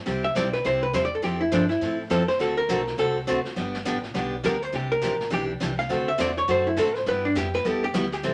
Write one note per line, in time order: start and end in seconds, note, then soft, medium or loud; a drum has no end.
0.06 0.34 C2 medium
0.06 0.26 C3 medium
0.06 0.26 G3 medium
0.06 0.26 C4 medium
0.06 0.26 E4 medium
0.06 0.26 G4 medium
0.06 brush sweep soft
0.06 snare soft
0.24 0.35 E5 medium
0.35 0.64 B1 medium
0.35 0.46 C3 medium
0.35 0.46 G3 medium
0.35 0.47 C4 medium
0.35 0.47 E4 medium
0.35 0.47 G4 medium
0.35 0.53 D5 medium
0.35 snare medium
0.35 hi-hat pedal medium
0.53 0.64 B4 medium
0.53 snare soft
0.64 0.93 C2 medium
0.64 0.84 C3 medium
0.64 0.84 G3 medium
0.64 0.84 C4 medium
0.64 0.84 E4 medium
0.64 0.85 G4 medium
0.64 0.82 C5 medium
0.64 brush sweep soft
0.64 snare soft
0.83 0.94 B4 medium
0.93 1.22 E2 medium
0.93 1.04 C3 medium
0.93 1.05 G3 medium
0.93 1.05 C4 medium
0.93 1.05 E4 medium
0.93 1.05 G4 medium
0.93 1.04 C5 medium
0.93 snare medium
0.93 hi-hat pedal medium
1.05 1.14 D5 medium
1.15 1.23 A4 medium
1.22 1.51 F2 medium
1.22 1.42 F3 medium
1.22 1.42 C4 medium
1.22 1.43 E4 medium
1.22 1.41 G4 medium
1.22 1.43 A4 medium
1.22 brush sweep medium
1.22 snare soft
1.41 1.52 E4 medium
1.52 1.80 G2 medium
1.52 1.63 F3 medium
1.52 1.63 C4 medium
1.52 1.69 D4 medium
1.52 1.63 E4 medium
1.52 1.63 A4 medium
1.52 snare medium
1.52 hi-hat pedal medium
1.69 1.97 E4 medium
1.69 snare soft
1.81 2.10 A2 medium
1.81 2.01 F3 medium
1.81 2.01 C4 medium
1.81 2.01 E4 medium
1.81 2.02 A4 medium
1.81 brush sweep soft
1.81 snare soft
2.10 2.39 F2 medium
2.10 2.21 F3 medium
2.10 2.21 C4 medium
2.10 2.22 E4 medium
2.10 2.22 A4 medium
2.10 2.28 A4 medium
2.10 snare medium
2.10 hi-hat pedal soft
2.28 2.39 C5 loud
2.28 snare soft
2.39 2.68 D2 medium
2.39 2.59 D3 medium
2.39 2.59 A3 medium
2.39 2.59 C4 medium
2.39 2.60 F#4 medium
2.39 2.60 A4 medium
2.39 2.57 A4 medium
2.39 brush sweep medium
2.39 snare soft
2.57 2.95 A#4 medium
2.69 2.97 B1 medium
2.69 2.80 D3 medium
2.69 2.80 A3 medium
2.69 2.80 C4 medium
2.69 2.80 F#4 medium
2.69 2.80 A4 medium
2.69 snare medium
2.69 hi-hat pedal medium
2.87 snare soft
2.97 3.26 C2 medium
2.97 3.18 D3 medium
2.97 3.18 A3 medium
2.97 3.18 C4 medium
2.97 3.18 F#4 medium
2.97 3.18 A4 medium
2.97 3.16 A4 medium
2.97 brush sweep soft
2.97 snare soft
3.27 3.44 D2 medium
3.27 3.38 D3 medium
3.27 3.38 A3 medium
3.27 3.38 C4 medium
3.27 3.38 F#4 medium
3.27 3.39 A4 medium
3.27 snare medium
3.27 hi-hat pedal medium
3.45 muted upright bass stroke soft
3.45 snare soft
3.56 3.85 G1 medium
3.56 3.76 D3 medium
3.56 3.76 G3 medium
3.56 3.76 B3 medium
3.56 3.76 D4 medium
3.56 3.76 G4 medium
3.56 brush sweep medium
3.56 snare soft
3.74 snare medium
3.85 4.14 A1 medium
3.85 3.96 D3 medium
3.85 3.96 G3 medium
3.85 3.97 B3 medium
3.85 3.97 D4 medium
3.85 3.97 G4 medium
3.85 snare medium
3.85 hi-hat pedal medium
4.04 snare soft
4.14 4.43 B1 medium
4.14 4.34 D3 medium
4.14 4.34 G3 medium
4.14 4.34 B3 medium
4.14 4.34 D4 medium
4.14 4.35 G4 medium
4.14 brush sweep soft
4.14 snare soft
4.43 4.72 D2 medium
4.43 4.55 D3 medium
4.43 4.55 G3 medium
4.43 4.55 B3 medium
4.43 4.55 D4 medium
4.43 4.55 G4 medium
4.43 4.63 A#4 medium
4.43 snare medium
4.43 hi-hat pedal medium
4.62 4.73 C5 medium
4.62 snare soft
4.72 5.01 C2 medium
4.72 4.92 C3 medium
4.72 4.93 E3 medium
4.72 4.93 D4 medium
4.72 4.93 G4 medium
4.72 4.92 G4 medium
4.72 brush sweep soft
4.72 snare soft
4.92 5.29 A#4 loud
5.02 5.31 A1 medium
5.02 5.13 C3 medium
5.02 5.13 E3 medium
5.02 5.13 D4 medium
5.02 5.13 G4 medium
5.02 snare medium
5.02 hi-hat pedal medium
5.21 snare soft
5.30 5.60 B1 medium
5.30 5.51 C3 medium
5.30 5.51 E3 medium
5.30 5.51 D4 medium
5.30 5.51 G4 medium
5.30 5.44 G4 medium
5.30 brush sweep medium
5.30 snare soft
5.60 5.89 C2 medium
5.60 5.71 C3 medium
5.60 5.71 E3 medium
5.60 5.72 D4 medium
5.60 5.72 G4 medium
5.60 snare medium
5.60 hi-hat pedal medium
5.79 5.92 F5 medium
5.79 snare soft
5.89 6.18 D2 medium
5.89 6.09 D3 medium
5.89 6.09 A3 medium
5.89 6.10 C4 medium
5.89 6.10 F#4 medium
5.89 6.10 A4 medium
5.89 6.08 F#5 loud
5.89 brush sweep medium
5.89 snare soft
6.08 6.19 E5 medium
6.18 6.47 E2 medium
6.18 6.29 D3 medium
6.18 6.30 A3 medium
6.18 6.30 C4 medium
6.18 6.30 F#4 medium
6.18 6.30 A4 medium
6.18 6.37 D5 medium
6.18 snare medium
6.18 hi-hat pedal medium
6.37 6.48 C#5 medium
6.37 snare soft
6.48 6.76 F#2 medium
6.48 6.68 D3 medium
6.48 6.68 A3 medium
6.48 6.68 C4 medium
6.48 6.68 F#4 medium
6.48 6.68 A4 medium
6.48 6.67 C5 medium
6.48 brush sweep soft
6.48 snare soft
6.67 6.77 E4 medium
6.77 7.05 A2 medium
6.77 6.88 D3 medium
6.77 6.88 A3 medium
6.77 6.88 C4 medium
6.77 6.88 F#4 medium
6.77 6.89 A4 medium
6.77 6.96 A4 medium
6.77 snare medium
6.77 hi-hat pedal medium
6.95 7.07 C5 loud
6.95 snare soft
7.06 7.35 G2 medium
7.06 7.26 G3 medium
7.06 7.26 B3 medium
7.06 7.26 E4 medium
7.06 7.26 G4 medium
7.06 7.25 B4 medium
7.06 brush sweep soft
7.06 snare soft
7.25 7.36 D4 medium
7.35 7.64 F2 medium
7.35 7.46 G3 medium
7.35 7.46 B3 medium
7.35 7.47 E4 medium
7.35 7.47 G4 medium
7.35 7.54 G4 medium
7.35 snare medium
7.35 hi-hat pedal medium
7.54 7.67 B4 loud
7.54 snare soft
7.65 7.93 E2 medium
7.65 7.84 G3 medium
7.65 7.85 B3 medium
7.65 7.85 E4 medium
7.65 7.85 G4 medium
7.65 7.83 A4 medium
7.65 brush sweep medium
7.65 snare soft
7.84 7.97 G4 medium
7.94 8.22 D2 medium
7.94 8.05 G3 medium
7.94 8.05 B3 medium
7.94 8.05 E4 medium
7.94 8.13 F#4 medium
7.94 8.05 G4 medium
7.94 snare medium
7.94 hi-hat pedal medium
8.12 8.34 G4 medium
8.12 snare soft
8.23 8.34 C2 medium
8.23 8.34 C3 medium
8.23 8.34 E3 medium
8.23 8.34 G3 medium
8.23 8.34 C4 medium
8.23 8.34 E4 medium
8.23 8.34 A4 medium
8.23 brush sweep soft
8.23 snare soft